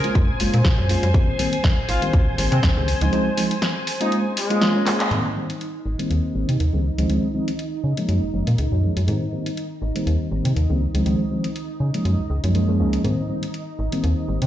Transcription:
Already playing: horn section A#4, string machine C5 G#5
0.04 reed electric piano G#3 A#3 C#4 F4, closed hi-hat
0.15 fm bass F#2, kick, closed hi-hat
0.29 fm bass F#1
0.40 fm bass F#1, reed electric piano G#3 A#3 C#4 F4, open hi-hat
0.54 fm bass A#2, closed hi-hat
0.65 fm bass C#2, kick, snare, closed hi-hat
0.78 fm bass F#2
0.89 reed electric piano G#3 A#3 C#4 F4, open hi-hat
1.03 fm bass F#2, closed hi-hat
1.14 fm bass G#2, reed electric piano D#3 G3 A#3 C4, kick, closed hi-hat
1.39 reed electric piano D#3 G3 A#3 C4, open hi-hat
1.53 closed hi-hat
1.64 kick, snare, closed hi-hat
1.89 fm bass G#1, horn section F4, open hi-hat
2.02 reed electric piano D#3 G3 A#3 C4, closed hi-hat
2.13 fm bass D#2, kick, closed hi-hat
2.38 fm bass G#1, reed electric piano D#3 G3 A#3 C4, open hi-hat
2.52 fm bass C3, horn section C4, closed hi-hat
2.63 fm bass D#2, horn section C4, kick, snare, closed hi-hat
2.76 fm bass C#2, reed electric piano D#3 G3 A#3 C4
2.88 open hi-hat
3.01 fm bass C#2, reed electric piano F3 G#3 C4 D#4, closed hi-hat
3.12 reed electric piano F3 G#3 C4 D#4, closed hi-hat
3.37 reed electric piano F3 G#3 C4 D#4, open hi-hat
3.51 closed hi-hat
3.62 snare, closed hi-hat
3.87 open hi-hat
4.00 reed electric piano G#3 A#3 C#4 F4, horn section D#4, closed hi-hat
4.12 closed hi-hat
4.37 horn section G#3, open hi-hat
4.50 reed electric piano G#3 A#3 C#4 F4, closed hi-hat
4.61 reed electric piano G#3 A#3 C#4 F4, snare, closed hi-hat
4.75 reed electric piano G#3 A#3 C#4 F4
4.86 reed electric piano G#3 A#3 C#4 F4, clap, open hi-hat
5.00 clap, closed hi-hat
5.11 fm bass G#2, reed electric piano D#3 G3 A#3 C4, string machine D#4 D#5, closed hi-hat
5.36 reed electric piano D#3 G3 A#3 C4
5.50 closed hi-hat
5.61 closed hi-hat
5.86 fm bass G#1
5.99 reed electric piano D#3 G3 A#3 C4, closed hi-hat
6.10 fm bass D#2, closed hi-hat
6.35 fm bass G#1, reed electric piano D#3 G3 A#3 C4
6.49 fm bass C3, closed hi-hat
6.60 fm bass D#2, closed hi-hat
6.73 fm bass C#2, reed electric piano D#3 G3 A#3 C4
6.98 fm bass C#2, reed electric piano D#3 F3 G#3 C4, closed hi-hat
7.09 fm bass C#2, reed electric piano D#3 F3 G#3 C4, closed hi-hat
7.34 reed electric piano D#3 F3 G#3 C4
7.48 closed hi-hat
7.59 closed hi-hat
7.84 fm bass C#3
7.97 reed electric piano F3 G#3 A#3 C#4, closed hi-hat
8.09 fm bass F#2, closed hi-hat
8.22 fm bass F#1
8.33 fm bass F#1, reed electric piano F3 G#3 A#3 C#4
8.47 fm bass A#2, closed hi-hat
8.58 fm bass C#2, closed hi-hat
8.72 fm bass F#2
8.82 reed electric piano F3 G#3 A#3 C#4
8.97 fm bass F#2, closed hi-hat
9.07 fm bass G#2, reed electric piano D#3 G3 A#3 C4, closed hi-hat
9.32 reed electric piano D#3 G3 A#3 C4
9.46 closed hi-hat
9.57 closed hi-hat
9.82 fm bass G#1
9.95 reed electric piano D#3 G3 A#3 C4, closed hi-hat
10.06 fm bass D#2, closed hi-hat
10.31 fm bass G#1, reed electric piano D#3 G3 A#3 C4
10.45 fm bass C3, closed hi-hat
10.56 fm bass D#2, closed hi-hat
10.70 fm bass C#2, reed electric piano D#3 G3 A#3 C4
10.94 fm bass C#2, reed electric piano D#3 F3 G#3 C4, closed hi-hat
11.06 fm bass C#2, reed electric piano D#3 F3 G#3 C4, closed hi-hat
11.30 reed electric piano D#3 F3 G#3 C4
11.44 closed hi-hat
11.56 closed hi-hat
11.80 fm bass C#3
11.94 reed electric piano F3 G#3 A#3 C#4, closed hi-hat
12.05 fm bass F#2, closed hi-hat
12.19 fm bass C#2
12.30 fm bass C#2
12.43 fm bass F#2, reed electric piano F3 G#3 A#3 C#4, closed hi-hat
12.55 reed electric piano F3 G#3 A#3 C#4, closed hi-hat
12.68 reed electric piano F3 G#3 A#3 C#4
12.79 fm bass C#2, reed electric piano F3 G#3 A#3 C#4
12.93 closed hi-hat
13.04 fm bass G#2, reed electric piano D#3 G3 A#3 C4, string machine D#4 D#5, closed hi-hat
13.29 reed electric piano D#3 G3 A#3 C4
13.43 closed hi-hat
13.54 closed hi-hat
13.79 fm bass G#1
13.92 reed electric piano D#3 G3 A#3 C4, closed hi-hat
14.04 fm bass D#2, closed hi-hat
14.28 fm bass G#1, reed electric piano D#3 G3 A#3 C4
14.42 fm bass C3, closed hi-hat

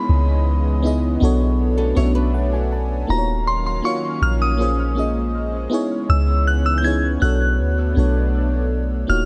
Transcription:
Already playing: analog synth pad C#3 E3 G#3 B3 D#5, fm electric piano B3 D#4 E4 G#4 C#5, synth bell B5, downlifter
0.09 808-style bass C#2
0.82 fm electric piano B3 D#4 E4 G#4
0.87 fm electric piano D#5
1.20 808-style bass B1, analog synth pad A3 D4, fm electric piano B3 D4 F#4 A4
1.25 fm electric piano C#5
1.78 nylon-string guitar C#4 A4
1.95 808-style bass B1, fm electric piano B3 C#4 F#4 A4 E5, nylon-string guitar E4 C#5
1.99 fm electric piano D4 C#5
2.15 nylon-string guitar D4 B4
2.34 fm electric piano F#5
2.53 fm electric piano G#5
2.72 fm electric piano A5
3.07 808-style bass D#1, analog synth pad D#3 F#3 A#3 C#4 F5, fm electric piano A#3 D#4 F4 F#4, synth bell A#5
3.12 fm electric piano C5
3.18 fm electric piano C#5
3.47 synth bell C6
3.66 synth bell C6
3.82 fm electric piano A#3 D#4 F4 F#4, synth bell C#6
3.87 fm electric piano C#5
4.21 808-style bass A#1, synth bell F6
4.42 synth bell D#6
4.57 analog synth pad G#3, fm electric piano A#3 C#4 F4 G#4
4.62 fm electric piano C5
4.95 fm electric piano A#3 C#4 F4 G#4
4.99 fm electric piano D#5
5.70 analog synth pad C#3 E3 B3 C#4, fm electric piano B3 D#4 E4 G#4
5.74 fm electric piano C#5
6.09 808-style bass C#2, synth bell E6
6.47 synth bell F#6
6.66 synth bell E6
6.78 synth bell G6
6.82 fm electric piano B3 D#4 E4 G#4, synth bell G#6
6.87 fm electric piano C#5
7.20 808-style bass B1, analog synth pad A3 B3 D4, fm electric piano B3 D4 F#4 A4, synth bell F#6
7.25 fm electric piano C#5
7.59 808-style bass D2
7.95 808-style bass B1, fm electric piano B3 D4 F#4 A4
7.99 fm electric piano C#5
9.07 808-style bass D#1, analog synth pad D#3 F#3 A#3 C#4 F5, fm electric piano A#3 D#4 F4 F#4, synth bell F6
9.12 fm electric piano C#5

